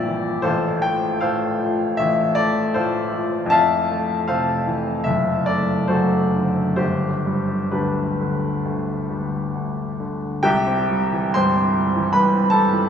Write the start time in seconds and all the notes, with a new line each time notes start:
Already playing: A#1 A#2 C4 C5 D5 E5 G5
0.06 E3
0.42 A1 F4 A4 C5
0.82 A3 G5
1.21 A2 A4 C5 F5
1.60 F3
1.97 A1 E5
2.35 A3 D5
2.74 A2 F4 A4 C5
3.14 F3
3.46 F2
3.50 E5 F5 A5
3.91 A3
4.28 C3 A4 C5 F5
4.67 E3
5.04 F#1 E5
5.46 A3 D5
5.88 F#2 F#4 A4 C5
6.35 D3
6.76 G1 G4 C5
7.26 G3
7.71 D2 D4 G4 B4
8.21 D3
8.65 D2
9.10 G3
9.55 D2
10.00 D3
10.43 C2 G4 E5 G5
10.67 C4
10.91 G3
11.13 E3
11.34 G2 C5 G5 C6
11.57 C4
11.78 G3
11.96 E3
12.13 G2 B4 B5
12.32 C4
12.50 G3 A4 A5
12.73 E3